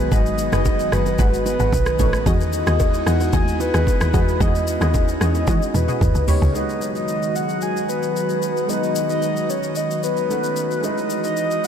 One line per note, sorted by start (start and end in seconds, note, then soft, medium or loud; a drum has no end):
0.00 1.69 D#3 medium
0.00 1.69 F#3 medium
0.00 1.69 G#3 medium
0.00 1.69 B3 medium
0.00 2.22 F#4 medium
0.00 0.14 B4 loud
0.12 0.49 G#1 loud
0.12 0.21 F#4 medium
0.12 0.21 G#4 medium
0.12 0.21 B4 loud
0.12 0.52 D#5 loud
0.12 kick loud
0.12 low conga medium
0.12 shaker medium
0.26 shaker soft
0.38 shaker medium
0.52 0.89 F#1 medium
0.52 0.89 F#4 medium
0.52 0.89 G#4 medium
0.52 0.89 B4 medium
0.52 0.94 D#5 loud
0.52 cross-stick loud
0.52 low bongo medium
0.52 shaker medium
0.65 kick loud
0.65 high bongo medium
0.65 shaker medium
0.79 shaker medium
0.92 1.17 F#1 medium
0.92 1.17 F#4 medium
0.92 1.17 G#4 medium
0.92 1.17 B4 medium
0.92 1.19 B4 loud
0.92 cross-stick medium
0.92 shaker medium
1.06 high bongo soft
1.06 shaker medium
1.18 1.56 G#1 medium
1.18 1.56 F#4 loud
1.18 1.56 G#4 medium
1.18 1.57 B4 loud
1.18 1.44 B4 loud
1.18 kick loud
1.18 low bongo medium
1.18 low conga medium
1.18 shaker medium
1.34 shaker medium
1.46 2.28 B4 loud
1.46 low bongo medium
1.46 shaker medium
1.60 1.72 G#1 medium
1.60 1.72 F#4 medium
1.60 1.73 G#4 medium
1.60 1.73 B4 medium
1.60 shaker medium
1.72 1.97 B1 loud
1.72 2.26 D#3 medium
1.72 2.26 A3 medium
1.72 6.51 B3 medium
1.72 2.26 C#4 medium
1.72 kick medium
1.72 high bongo medium
1.72 shaker medium
1.86 cross-stick loud
1.86 shaker medium
1.99 2.24 A1 medium
1.99 2.24 D#4 medium
1.99 2.24 A4 medium
1.99 2.24 C#5 medium
1.99 kick loud
1.99 low conga medium
1.99 shaker medium
2.13 cross-stick loud
2.13 shaker soft
2.26 2.63 E2 loud
2.26 5.97 G#3 medium
2.26 4.38 D#4 medium
2.26 5.97 E4 medium
2.26 2.35 F#4 medium
2.26 5.97 F#4 medium
2.26 2.35 G#4 medium
2.26 2.35 D#5 loud
2.26 2.67 D#5 loud
2.26 kick loud
2.26 low conga medium
2.26 shaker medium
2.41 shaker soft
2.53 shaker medium
2.67 3.03 D#2 medium
2.67 3.03 F#4 medium
2.67 3.03 G#4 medium
2.67 3.04 D#5 medium
2.67 3.09 D#5 loud
2.67 cross-stick loud
2.67 low bongo medium
2.67 shaker medium
2.80 kick loud
2.80 high bongo medium
2.80 shaker medium
2.94 shaker medium
3.06 3.31 E2 loud
3.06 3.31 F#4 medium
3.06 3.31 G#4 medium
3.06 3.31 D#5 medium
3.06 3.33 F#5 loud
3.06 cross-stick medium
3.06 shaker medium
3.20 high bongo soft
3.20 shaker medium
3.33 3.71 D#2 loud
3.33 3.71 F#4 loud
3.33 3.71 G#4 medium
3.33 3.71 D#5 loud
3.33 3.58 G#5 loud
3.33 kick loud
3.33 low bongo medium
3.33 low conga medium
3.33 shaker medium
3.48 shaker medium
3.60 4.42 B4 loud
3.60 low bongo medium
3.60 shaker medium
3.74 3.86 D#2 medium
3.74 4.11 F#4 medium
3.74 4.11 G#4 medium
3.74 4.11 D#5 medium
3.74 cross-stick loud
3.74 shaker medium
3.87 kick loud
3.87 high bongo medium
3.87 shaker medium
4.01 4.13 D#2 medium
4.01 cross-stick loud
4.01 shaker medium
4.13 4.38 E2 loud
4.13 4.38 F#4 medium
4.13 4.38 G#4 medium
4.13 4.39 D#5 medium
4.13 kick loud
4.13 low conga medium
4.13 shaker medium
4.28 shaker soft
4.40 4.78 E2 loud
4.40 5.99 C#4 medium
4.40 4.49 F#4 loud
4.40 4.49 G#4 medium
4.40 4.50 D#5 loud
4.40 4.81 D#5 loud
4.40 kick loud
4.40 low conga medium
4.40 shaker medium
4.55 shaker medium
4.67 shaker medium
4.81 5.17 D#2 loud
4.81 5.18 F#4 medium
4.81 5.18 G#4 medium
4.81 5.18 D#5 medium
4.81 5.71 D#5 medium
4.81 cross-stick loud
4.81 low bongo medium
4.81 shaker medium
4.94 kick loud
4.94 high bongo medium
4.94 shaker medium
5.08 shaker medium
5.21 5.45 E2 medium
5.21 5.46 F#4 medium
5.21 5.46 G#4 medium
5.21 5.46 D#5 medium
5.21 cross-stick medium
5.21 shaker medium
5.35 high bongo soft
5.35 shaker medium
5.47 5.60 E3 loud
5.47 5.85 F#4 loud
5.47 5.85 G#4 medium
5.47 5.85 D#5 loud
5.47 kick loud
5.47 high tom medium
5.47 low bongo medium
5.47 low conga medium
5.47 shaker medium
5.62 shaker medium
5.74 5.87 E2 medium
5.74 6.24 B4 loud
5.74 mid tom medium
5.74 low bongo medium
5.74 shaker medium
5.88 6.01 F#4 medium
5.88 6.01 G#4 medium
5.88 6.01 D#5 medium
5.88 mid tom medium
5.88 shaker medium
6.01 6.14 D#2 loud
6.01 6.54 C#3 medium
6.01 6.54 A#3 medium
6.01 6.54 D#4 medium
6.01 6.54 G4 medium
6.01 kick loud
6.01 mid tom medium
6.01 high bongo medium
6.01 shaker medium
6.15 6.27 C#2 medium
6.15 shaker medium
6.28 6.53 G4 medium
6.28 6.53 B4 medium
6.28 6.53 C#5 medium
6.28 6.53 C#5 loud
6.28 floor tom loud
6.28 open hi-hat medium
6.28 low conga medium
6.28 shaker medium
6.42 6.54 C#2 loud
6.42 floor tom loud
6.42 shaker soft
6.52 10.79 D#3 medium
6.52 10.26 F#3 medium
6.52 8.64 G#3 medium
6.52 10.26 G#3 medium
6.52 8.65 B3 medium
6.52 8.65 D#4 medium
6.52 10.79 F#4 medium
6.52 6.93 D#5 loud
6.52 shaker medium
6.57 8.66 F#4 medium
6.57 8.67 B4 medium
6.69 shaker soft
6.81 shaker medium
6.95 7.37 D#5 loud
6.95 shaker medium
7.08 shaker medium
7.23 shaker medium
7.36 7.64 F#5 loud
7.36 shaker medium
7.49 shaker soft
7.61 7.89 G#5 loud
7.61 shaker medium
7.77 shaker medium
7.89 8.71 B4 loud
7.89 shaker medium
8.03 shaker medium
8.16 shaker medium
8.29 shaker medium
8.42 shaker medium
8.57 shaker soft
8.67 10.25 G#3 medium
8.67 10.26 B3 medium
8.67 10.27 D#4 medium
8.67 9.10 D#5 loud
8.67 shaker medium
8.71 10.28 F#4 medium
8.71 10.29 B4 medium
8.83 shaker soft
8.95 shaker medium
9.09 9.51 D#5 loud
9.09 shaker soft
9.22 shaker medium
9.37 shaker medium
9.50 9.76 C#5 medium
9.50 shaker medium
9.63 shaker medium
9.75 10.01 D#5 loud
9.75 shaker medium
9.91 shaker medium
10.03 10.86 B4 loud
10.03 shaker medium
10.17 shaker medium
10.29 10.83 A3 medium
10.29 10.83 C#4 medium
10.29 10.81 D#4 medium
10.29 10.84 F#4 medium
10.29 10.84 B4 medium
10.29 shaker medium
10.43 shaker medium
10.56 shaker medium
10.71 shaker soft
10.81 11.67 E3 medium
10.81 11.67 G#3 medium
10.81 11.67 D#4 medium
10.81 11.67 E4 medium
10.81 11.67 F#4 medium
10.81 11.67 D#5 medium
10.81 11.24 D#5 loud
10.81 shaker medium
10.86 11.67 F#4 medium
10.86 11.67 B4 medium
10.98 shaker soft
11.10 shaker medium
11.24 11.66 D#5 loud
11.24 shaker medium
11.37 shaker medium
11.51 shaker medium
11.64 shaker medium